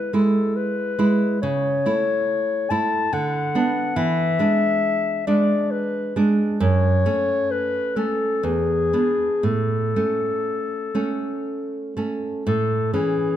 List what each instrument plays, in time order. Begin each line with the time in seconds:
Already playing: nylon-string guitar G#3 E4, clarinet B4
0.13 nylon-string guitar G#3 E4, clarinet A4
0.56 clarinet B4
0.99 nylon-string guitar G#3 E4
1.42 nylon-string guitar C#3, clarinet C#5
1.86 nylon-string guitar A3 E4
2.70 nylon-string guitar A3 E4, clarinet A5
3.13 nylon-string guitar D3, clarinet F#5
3.55 nylon-string guitar B3 D4
3.96 nylon-string guitar E3, clarinet E5
4.39 nylon-string guitar G#3 D4
5.27 nylon-string guitar G#3 D4, clarinet D5
5.71 clarinet B4
6.16 nylon-string guitar G#3 D4
6.60 nylon-string guitar F#2, clarinet C#5
7.06 nylon-string guitar A3 C#4
7.51 clarinet B4
7.96 nylon-string guitar A3 C#4, clarinet A4
8.43 nylon-string guitar E2, clarinet G#4
8.93 nylon-string guitar B3 D4
9.43 nylon-string guitar A2, clarinet A4
9.96 nylon-string guitar A3 C#4
10.95 nylon-string guitar A3 C#4
11.97 nylon-string guitar A3 C#4
12.47 nylon-string guitar A2, clarinet A4
12.92 nylon-string guitar E3 C#4, clarinet G#4